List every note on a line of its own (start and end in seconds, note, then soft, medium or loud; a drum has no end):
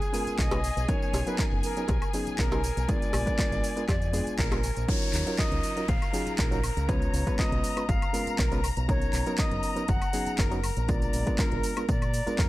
0.00 0.40 G#4 medium
0.00 4.90 G#4 medium
0.00 4.89 G#5 medium
0.00 closed hi-hat soft
0.00 tambourine soft
0.12 0.48 G#3 medium
0.12 0.48 B3 medium
0.12 0.48 C#4 medium
0.12 0.48 F4 medium
0.12 0.49 A#4 loud
0.12 open hi-hat loud
0.12 tambourine medium
0.27 muted fingered electric bass stroke soft
0.27 closed hi-hat medium
0.27 tambourine soft
0.39 0.70 B1 medium
0.39 0.90 D#5 loud
0.39 kick loud
0.39 clap loud
0.39 closed hi-hat medium
0.39 tambourine soft
0.51 0.59 G#3 medium
0.51 0.59 B3 medium
0.51 0.59 C#4 medium
0.51 0.59 F4 medium
0.51 0.60 B4 loud
0.51 closed hi-hat soft
0.51 tambourine soft
0.51 cowbell medium
0.51 high woodblock medium
0.64 open hi-hat loud
0.64 tambourine medium
0.77 0.84 B1 loud
0.77 closed hi-hat medium
0.77 tambourine soft
0.88 1.23 F#3 medium
0.88 1.23 B3 medium
0.88 1.24 C#4 medium
0.88 1.24 D#4 medium
0.88 1.24 A#4 medium
0.88 1.29 C#5 loud
0.88 kick loud
0.88 closed hi-hat medium
0.88 tambourine soft
1.02 tambourine soft
1.13 1.22 B1 medium
1.13 open hi-hat loud
1.13 tambourine medium
1.13 cowbell medium
1.27 1.74 F#3 medium
1.27 1.74 B3 medium
1.27 1.74 C#4 medium
1.27 1.74 D#4 medium
1.27 1.74 A#4 medium
1.27 1.38 B4 medium
1.27 closed hi-hat soft
1.27 tambourine soft
1.39 1.45 A#4 medium
1.39 kick loud
1.39 clap loud
1.39 closed hi-hat medium
1.39 tambourine soft
1.52 1.60 F#1 loud
1.63 2.10 A#4 medium
1.63 open hi-hat loud
1.63 tambourine medium
1.77 1.84 F#3 medium
1.77 1.84 B3 medium
1.77 1.85 C#4 medium
1.77 1.85 D#4 medium
1.77 1.85 A#4 medium
1.77 closed hi-hat medium
1.77 tambourine soft
1.88 1.97 B1 loud
1.88 kick loud
1.88 closed hi-hat medium
1.88 tambourine soft
1.88 cowbell medium
2.02 closed hi-hat soft
2.02 tambourine soft
2.02 high woodblock medium
2.13 2.49 F#3 medium
2.13 2.49 B3 medium
2.13 2.49 C#4 medium
2.13 2.49 D#4 medium
2.13 2.49 G#4 loud
2.13 open hi-hat loud
2.13 tambourine medium
2.27 muted fingered electric bass stroke soft
2.27 closed hi-hat medium
2.27 tambourine soft
2.38 2.70 B1 medium
2.38 2.91 A#4 loud
2.38 kick loud
2.38 clap loud
2.38 closed hi-hat medium
2.38 tambourine soft
2.52 2.59 F#3 medium
2.52 2.59 B3 medium
2.52 2.59 C#4 medium
2.52 2.60 D#4 medium
2.52 2.60 A#4 loud
2.52 tambourine soft
2.52 cowbell medium
2.64 open hi-hat loud
2.64 tambourine medium
2.77 2.85 B1 loud
2.77 closed hi-hat medium
2.77 tambourine soft
2.88 3.23 G#3 medium
2.88 3.23 B3 medium
2.88 3.24 D4 medium
2.88 3.24 F4 medium
2.88 3.24 A#4 loud
2.88 3.88 D5 loud
2.88 kick loud
2.88 closed hi-hat medium
2.88 tambourine soft
3.02 closed hi-hat soft
3.02 tambourine soft
3.13 3.22 A#1 medium
3.13 open hi-hat loud
3.13 tambourine medium
3.13 cowbell medium
3.13 high woodblock medium
3.26 3.73 G#3 medium
3.26 3.73 B3 medium
3.26 3.73 D4 medium
3.26 3.74 F4 medium
3.26 3.74 A#4 medium
3.26 kick medium
3.26 closed hi-hat medium
3.26 tambourine soft
3.39 kick loud
3.39 clap loud
3.39 closed hi-hat medium
3.39 tambourine soft
3.52 3.59 G#1 loud
3.52 closed hi-hat soft
3.52 tambourine soft
3.64 open hi-hat medium
3.64 tambourine medium
3.76 3.84 G#3 medium
3.76 3.84 B3 medium
3.76 3.84 D4 medium
3.76 3.84 F4 medium
3.76 3.85 A#4 medium
3.76 closed hi-hat medium
3.76 tambourine soft
3.88 4.20 F2 medium
3.88 4.35 D5 medium
3.88 kick loud
3.88 clap medium
3.88 closed hi-hat medium
3.88 tambourine soft
3.88 cowbell medium
4.02 closed hi-hat soft
4.02 tambourine soft
4.13 4.48 G#3 medium
4.13 4.48 B3 medium
4.13 4.49 D4 medium
4.13 4.49 F4 medium
4.13 4.49 G#4 loud
4.13 open hi-hat loud
4.13 tambourine medium
4.27 muted fingered electric bass stroke soft
4.27 closed hi-hat medium
4.27 tambourine soft
4.38 4.70 A#1 loud
4.38 4.90 A#4 medium
4.38 kick loud
4.38 clap loud
4.38 closed hi-hat medium
4.38 tambourine soft
4.51 4.59 G#3 loud
4.51 4.59 B3 medium
4.51 4.59 D4 medium
4.51 4.59 F4 medium
4.51 4.60 A#4 loud
4.51 closed hi-hat soft
4.51 tambourine soft
4.51 cowbell medium
4.51 high woodblock medium
4.63 open hi-hat loud
4.63 tambourine medium
4.77 4.85 A#1 medium
4.77 closed hi-hat medium
4.77 tambourine soft
4.88 5.23 F#3 medium
4.88 5.23 C#4 medium
4.88 5.24 D#4 medium
4.88 5.24 F4 medium
4.88 5.24 A#4 medium
4.88 5.40 C#5 medium
4.88 12.49 A#5 medium
4.88 kick loud
4.88 closed hi-hat medium
4.88 crash loud
4.88 tambourine soft
4.88 downlifter medium
5.02 closed hi-hat soft
5.02 tambourine soft
5.13 5.22 D#2 medium
5.13 clap medium
5.13 open hi-hat loud
5.13 tambourine medium
5.26 5.73 F#3 medium
5.26 5.74 C#4 medium
5.26 5.74 D#4 medium
5.26 5.74 F4 medium
5.26 5.74 A#4 loud
5.26 closed hi-hat medium
5.26 tambourine soft
5.38 5.90 D#5 medium
5.38 kick loud
5.38 clap loud
5.38 closed hi-hat medium
5.38 tambourine soft
5.52 5.59 C#2 loud
5.52 closed hi-hat soft
5.63 open hi-hat loud
5.63 tambourine medium
5.76 5.84 F#3 medium
5.76 5.84 C#4 medium
5.76 5.84 D#4 medium
5.76 5.85 F4 medium
5.76 5.85 A#4 medium
5.76 closed hi-hat medium
5.76 tambourine soft
5.88 5.97 A#1 loud
5.88 6.38 F5 medium
5.88 kick loud
5.88 closed hi-hat medium
5.88 tambourine soft
6.02 closed hi-hat soft
6.02 tambourine soft
6.02 high woodblock medium
6.13 6.48 F#3 medium
6.13 6.49 C#4 medium
6.13 6.49 D#4 medium
6.13 6.49 F4 medium
6.13 6.49 G#4 loud
6.13 open hi-hat loud
6.13 tambourine medium
6.26 muted fingered electric bass stroke soft
6.26 closed hi-hat medium
6.26 tambourine soft
6.38 6.70 A#1 medium
6.38 6.90 A#4 medium
6.38 kick loud
6.38 clap loud
6.38 closed hi-hat medium
6.38 tambourine soft
6.51 6.59 F#3 loud
6.51 6.59 C#4 medium
6.51 6.59 D#4 medium
6.51 6.60 F4 medium
6.51 6.60 A#4 loud
6.51 closed hi-hat soft
6.51 tambourine soft
6.64 open hi-hat loud
6.64 tambourine medium
6.64 high woodblock medium
6.77 7.07 C#2 loud
6.77 closed hi-hat medium
6.77 tambourine soft
6.88 7.23 G#3 medium
6.88 7.24 B3 medium
6.88 7.24 C#4 medium
6.88 7.24 F4 medium
6.88 7.24 B4 loud
6.88 7.41 C#5 loud
6.88 kick loud
6.88 closed hi-hat medium
6.88 tambourine soft
7.02 closed hi-hat soft
7.02 tambourine soft
7.14 7.22 C#2 loud
7.14 open hi-hat loud
7.14 tambourine medium
7.27 7.73 G#3 medium
7.27 7.74 B3 medium
7.27 7.74 C#4 medium
7.27 7.74 F4 medium
7.27 7.74 B4 loud
7.27 kick medium
7.27 closed hi-hat medium
7.27 tambourine soft
7.39 7.90 D#5 medium
7.39 kick loud
7.39 clap loud
7.39 closed hi-hat medium
7.39 tambourine soft
7.52 7.60 B1 loud
7.52 closed hi-hat soft
7.64 open hi-hat loud
7.64 tambourine medium
7.76 7.84 G#3 medium
7.76 7.84 B3 medium
7.76 7.84 C#4 medium
7.76 7.84 F4 medium
7.76 7.84 B4 medium
7.76 closed hi-hat medium
7.76 tambourine soft
7.76 high woodblock medium
7.89 7.97 G#1 loud
7.89 8.41 F5 loud
7.89 kick loud
7.89 closed hi-hat medium
7.89 tambourine soft
8.02 closed hi-hat soft
8.02 tambourine soft
8.02 high woodblock medium
8.13 8.48 G#3 loud
8.13 8.48 B3 medium
8.13 8.48 C#4 medium
8.13 8.49 F4 medium
8.13 8.49 A#4 loud
8.13 open hi-hat loud
8.13 tambourine medium
8.27 muted fingered electric bass stroke soft
8.27 closed hi-hat medium
8.27 tambourine soft
8.39 8.70 B1 medium
8.39 8.67 A#4 medium
8.39 kick loud
8.39 clap loud
8.39 closed hi-hat medium
8.39 tambourine soft
8.52 8.59 G#3 loud
8.52 8.59 B3 medium
8.52 8.59 C#4 medium
8.52 8.60 F4 medium
8.52 8.60 B4 loud
8.52 closed hi-hat soft
8.52 tambourine soft
8.64 open hi-hat loud
8.64 tambourine medium
8.64 high woodblock medium
8.77 9.07 B1 loud
8.77 closed hi-hat medium
8.77 tambourine soft
8.88 9.24 F#3 medium
8.88 9.24 B3 medium
8.88 9.24 C#4 medium
8.88 9.24 D#4 medium
8.88 9.24 A#4 loud
8.88 9.41 C#5 loud
8.88 kick loud
8.88 closed hi-hat medium
8.88 tambourine soft
9.02 closed hi-hat soft
9.02 tambourine soft
9.13 9.22 B1 loud
9.13 clap medium
9.13 open hi-hat loud
9.13 tambourine medium
9.26 9.73 F#3 medium
9.26 9.74 B3 medium
9.26 9.74 C#4 medium
9.26 9.74 D#4 medium
9.26 9.74 A#4 loud
9.26 closed hi-hat soft
9.26 tambourine soft
9.38 9.91 D#5 loud
9.38 kick loud
9.38 clap loud
9.38 closed hi-hat medium
9.38 tambourine soft
9.51 9.59 F#1 loud
9.51 closed hi-hat soft
9.63 open hi-hat loud
9.63 tambourine medium
9.76 9.84 F#3 medium
9.76 9.84 B3 medium
9.76 9.84 C#4 medium
9.76 9.84 D#4 medium
9.76 9.84 A#4 medium
9.76 closed hi-hat soft
9.76 tambourine soft
9.88 9.97 F#1 loud
9.88 10.41 F#5 loud
9.88 kick loud
9.88 closed hi-hat medium
9.88 tambourine soft
10.02 closed hi-hat soft
10.02 tambourine soft
10.02 high woodblock medium
10.13 10.48 F#3 loud
10.13 10.48 B3 medium
10.13 10.49 C#4 medium
10.13 10.49 D#4 medium
10.13 10.49 G#4 loud
10.13 open hi-hat loud
10.13 tambourine medium
10.26 muted fingered electric bass stroke soft
10.26 closed hi-hat medium
10.26 tambourine soft
10.38 10.70 F#1 medium
10.38 10.91 A#4 medium
10.38 kick loud
10.38 clap loud
10.38 closed hi-hat medium
10.38 tambourine soft
10.51 10.59 F#3 loud
10.51 10.59 B3 medium
10.51 10.59 C#4 medium
10.51 10.59 D#4 medium
10.51 10.59 A#4 loud
10.51 closed hi-hat soft
10.51 tambourine soft
10.64 open hi-hat loud
10.64 tambourine medium
10.64 high woodblock medium
10.77 11.07 A#1 loud
10.77 closed hi-hat medium
10.77 tambourine soft
10.88 11.23 G#3 medium
10.88 11.24 B3 medium
10.88 11.24 D4 medium
10.88 11.24 F4 medium
10.88 11.24 A#4 loud
10.88 11.41 D5 loud
10.88 kick loud
10.88 closed hi-hat medium
10.88 tambourine soft
11.02 closed hi-hat soft
11.02 tambourine soft
11.13 11.22 A#1 medium
11.13 open hi-hat loud
11.13 tambourine medium
11.26 11.73 G#3 medium
11.26 11.73 B3 medium
11.26 11.73 D4 medium
11.26 11.74 F4 medium
11.26 11.74 A#4 loud
11.26 kick medium
11.26 closed hi-hat soft
11.26 tambourine soft
11.38 11.89 A#4 medium
11.38 kick loud
11.38 clap loud
11.38 closed hi-hat medium
11.38 tambourine soft
11.52 11.60 G#1 loud
11.52 closed hi-hat soft
11.63 open hi-hat loud
11.63 tambourine medium
11.76 11.84 G#3 medium
11.76 11.84 B3 medium
11.76 11.84 D4 medium
11.76 11.84 F4 medium
11.76 11.85 A#4 medium
11.76 closed hi-hat medium
11.76 tambourine soft
11.76 high woodblock medium
11.89 12.20 A#2 medium
11.89 12.41 D5 loud
11.89 kick loud
11.89 closed hi-hat medium
11.89 tambourine soft
12.02 closed hi-hat soft
12.02 tambourine soft
12.02 high woodblock medium
12.14 open hi-hat loud
12.14 tambourine medium
12.26 12.48 G#3 loud
12.26 12.49 B3 medium
12.26 12.49 D4 medium
12.26 12.49 F4 medium
12.26 12.49 A#4 loud
12.26 muted fingered electric bass stroke soft
12.26 closed hi-hat medium
12.26 tambourine soft
12.38 12.49 F2 medium
12.38 12.49 A#4 medium
12.38 kick loud
12.38 clap loud
12.38 closed hi-hat medium
12.38 tambourine soft